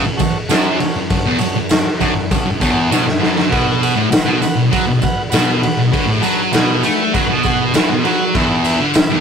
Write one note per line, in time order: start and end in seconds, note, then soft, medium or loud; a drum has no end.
0.05 0.18 F#2 medium
0.16 0.38 F#4 loud
0.16 0.38 A4 loud
0.16 0.38 C#5 loud
0.16 muted distorted electric guitar stroke medium
0.16 ride medium
0.16 tambourine medium
0.20 kick medium
0.48 0.79 F#2 medium
0.48 0.69 F#4 loud
0.48 0.69 A4 loud
0.48 0.70 C#5 loud
0.48 snare loud
0.48 ride medium
0.48 tambourine medium
0.78 0.99 F#4 medium
0.78 0.99 A4 medium
0.78 0.99 C#5 medium
0.78 muted distorted electric guitar stroke medium
0.78 ride medium
0.96 1.10 F#2 medium
1.09 1.25 F#2 medium
1.09 1.29 F#4 loud
1.09 1.29 A4 loud
1.09 1.30 C#5 loud
1.09 kick loud
1.09 ride medium
1.09 tambourine soft
1.26 1.39 E2 loud
1.38 1.54 F#2 medium
1.38 1.59 F#4 medium
1.38 1.59 A4 medium
1.38 1.59 C#5 medium
1.38 ride medium
1.38 tambourine medium
1.56 1.79 F#2 medium
1.69 1.89 F#4 medium
1.69 1.90 A4 medium
1.69 1.90 C#5 loud
1.69 snare loud
1.69 ride loud
1.69 tambourine medium
2.00 2.14 F#2 loud
2.00 2.20 F#4 medium
2.00 2.20 A4 medium
2.00 2.20 C#5 medium
2.00 kick medium
2.00 ride medium
2.00 tambourine medium
2.15 2.30 F#2 medium
2.31 2.45 F#2 medium
2.31 2.50 F#4 medium
2.31 2.51 A4 medium
2.31 2.51 C#5 medium
2.31 kick loud
2.31 ride medium
2.31 tambourine medium
2.46 2.60 F#2 medium
2.60 2.90 E2 loud
2.60 2.80 F#4 loud
2.60 2.80 A4 loud
2.60 2.81 C#5 loud
2.60 kick medium
2.60 ride medium
2.60 tambourine medium
2.90 3.05 B2 loud
2.90 3.10 F#4 loud
2.90 3.11 A4 loud
2.90 3.11 C#5 loud
2.90 snare medium
2.90 tambourine loud
3.06 3.18 F#2 medium
3.06 snare medium
3.19 3.49 F#2 loud
3.19 3.41 F#4 medium
3.19 3.41 A4 medium
3.19 3.41 B4 medium
3.19 snare medium
3.39 snare medium
3.50 3.95 B2 loud
3.50 3.71 F#4 loud
3.50 3.71 B4 medium
3.50 3.71 F#5 loud
3.50 kick loud
3.50 ride medium
3.82 4.02 F#4 medium
3.82 4.01 B4 medium
3.82 4.02 F#5 medium
3.82 ride medium
3.82 tambourine medium
3.96 4.10 A2 medium
4.10 4.31 F#4 medium
4.10 4.31 B4 medium
4.10 4.31 F#5 medium
4.10 muted distorted electric guitar stroke soft
4.10 snare loud
4.10 ride medium
4.10 tambourine medium
4.25 4.40 B2 medium
4.41 4.61 F#4 medium
4.41 4.62 B4 medium
4.41 4.62 F#5 medium
4.41 muted distorted electric guitar stroke medium
4.41 ride medium
4.41 tambourine medium
4.55 4.71 B2 medium
4.71 4.86 F#3 loud
4.71 4.92 F#4 medium
4.71 4.92 B4 medium
4.71 4.93 F#5 medium
4.71 kick loud
4.71 ride medium
4.71 tambourine medium
4.87 5.00 B2 medium
5.02 5.22 F#4 loud
5.02 5.22 B4 loud
5.02 5.23 F#5 loud
5.02 muted distorted electric guitar stroke medium
5.02 kick medium
5.02 ride medium
5.02 tambourine medium
5.30 5.62 B2 loud
5.30 5.51 F#4 loud
5.30 5.51 B4 loud
5.30 5.52 F#5 loud
5.30 ride loud
5.30 tambourine loud
5.34 snare loud
5.62 5.82 F#4 medium
5.62 5.82 B4 medium
5.62 5.82 F#5 medium
5.62 muted distorted electric guitar stroke medium
5.62 ride medium
5.77 5.92 B2 medium
5.91 6.07 D3 loud
5.91 6.12 F#4 loud
5.91 6.12 B4 medium
5.91 6.12 C#5 loud
5.91 kick loud
5.91 ride loud
6.07 6.22 A2 loud
6.20 6.52 F#3 loud
6.20 6.42 F#4 medium
6.20 6.42 B4 medium
6.20 6.42 A5 loud
6.20 ride medium
6.20 tambourine medium
6.51 6.82 B2 medium
6.51 6.72 F#4 medium
6.51 6.72 B4 medium
6.51 6.73 F#5 loud
6.51 snare loud
6.51 ride loud
6.51 tambourine medium
6.83 7.13 A3 medium
6.83 7.03 F#4 medium
6.83 7.03 B4 medium
6.83 7.04 G#5 loud
6.83 ride medium
6.83 tambourine medium
7.13 7.28 F#3 loud
7.13 7.33 F#4 medium
7.13 7.34 B4 medium
7.13 7.34 F#5 medium
7.13 kick loud
7.13 ride medium
7.13 tambourine medium
7.29 7.74 B2 loud
7.43 7.64 F#4 loud
7.43 7.65 B4 loud
7.43 7.64 F#5 loud
7.43 kick medium
7.43 ride medium
7.43 tambourine medium
7.74 7.89 E3 loud
7.74 7.94 F#4 loud
7.74 7.94 B4 medium
7.74 7.95 G#5 loud
7.74 snare loud
7.74 ride loud
7.74 tambourine medium
7.90 8.04 B2 loud
8.04 8.34 F#3 medium
8.04 8.24 F#4 medium
8.04 8.25 B4 medium
8.04 8.25 F#5 loud
8.04 ride medium
8.34 8.79 E2 loud
8.34 8.55 E4 loud
8.34 8.55 B4 medium
8.34 8.56 E5 loud
8.34 kick loud
8.34 ride medium
8.64 8.85 E4 medium
8.64 8.86 B4 medium
8.64 8.86 E5 loud
8.64 ride medium
8.64 tambourine medium
8.79 8.94 D3 medium
8.94 9.15 E4 medium
8.94 9.15 B4 medium
8.94 9.15 E5 medium
8.94 muted distorted electric guitar stroke medium
8.94 snare loud
8.94 ride loud
8.94 tambourine medium
9.10 9.20 E2 loud